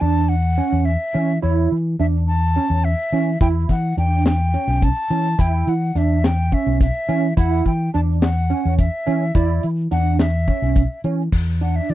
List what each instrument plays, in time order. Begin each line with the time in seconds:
0.01 fingered electric bass E2, tine electric piano D4, flute A5
0.29 flute F#5
0.58 tine electric piano C#4
0.72 fingered electric bass E2
0.85 flute E5
1.14 fingered electric bass E3, tine electric piano C#4
1.42 fingered electric bass E2, tine electric piano E4, flute C#5
1.72 fingered electric bass E3
1.99 fingered electric bass E2, tine electric piano D4, flute E5
2.28 flute A5
2.56 tine electric piano C#4
2.70 fingered electric bass E2
2.85 flute E5
3.12 fingered electric bass E3, tine electric piano C#4
3.41 fingered electric bass E2, tine electric piano E4, flute G5, kick, closed hi-hat, shaker
3.69 fingered electric bass E3, flute F#5, kick, snare, closed hi-hat
3.97 fingered electric bass E2, tine electric piano D4, flute G5, closed hi-hat, shaker
4.26 flute G5, snare, closed hi-hat, shaker
4.54 tine electric piano C#4, closed hi-hat
4.68 fingered electric bass B1
4.82 flute A5, kick, closed hi-hat, shaker
5.10 fingered electric bass E3, tine electric piano C#4, closed hi-hat, shaker
5.39 fingered electric bass E2, tine electric piano E4, flute G5, kick, closed hi-hat, shaker
5.67 fingered electric bass E3, flute F#5, closed hi-hat
5.95 fingered electric bass E2, tine electric piano D4, flute E5, snare, closed hi-hat, shaker
6.24 flute G5, snare, closed hi-hat, shaker
6.52 tine electric piano C#4, flute E5, kick, closed hi-hat
6.67 fingered electric bass B1
6.81 flute E5, kick, snare, closed hi-hat, shaker
7.09 fingered electric bass E3, tine electric piano C#4, closed hi-hat, shaker
7.37 fingered electric bass E2, tine electric piano E4, flute F#5, kick, closed hi-hat, shaker
7.65 fingered electric bass E3, flute G5, kick, closed hi-hat
7.94 fingered electric bass E2, tine electric piano D4, flute A5, closed hi-hat, shaker
8.22 flute F#5, snare, closed hi-hat, shaker
8.50 tine electric piano C#4, closed hi-hat
8.65 fingered electric bass E2
8.78 flute E5, kick, closed hi-hat, shaker
9.07 fingered electric bass E3, tine electric piano C#4, closed hi-hat, shaker
9.35 fingered electric bass E2, tine electric piano E4, flute D5, kick, closed hi-hat, shaker
9.63 fingered electric bass E3, closed hi-hat, shaker
9.91 fingered electric bass E2, tine electric piano D4, flute F#5, snare, closed hi-hat
10.19 flute E5, snare, closed hi-hat, shaker
10.48 tine electric piano C#4, kick, closed hi-hat, shaker
10.62 fingered electric bass B1
10.76 kick, closed hi-hat, shaker
11.04 fingered electric bass E3, tine electric piano C#4, closed hi-hat
11.32 fingered electric bass E2, kick, crash
11.61 tine electric piano D4, flute F#5, closed hi-hat
11.76 flute E5
11.89 fingered electric bass E3, flute D5, closed hi-hat